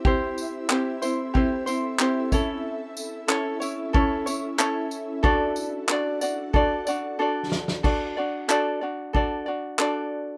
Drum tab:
CC |----------------|----------------|----------------|x---------------|
TB |--x---x---x---x-|--x---x---x---x-|--x---x---x-----|----------------|
CP |----x-------x---|----x-------x---|----x-----------|----x-------x---|
SD |----------------|----------------|--------------oo|----------------|
BD |o-------o-----o-|--------o-------|o-------o-------|o-------o-------|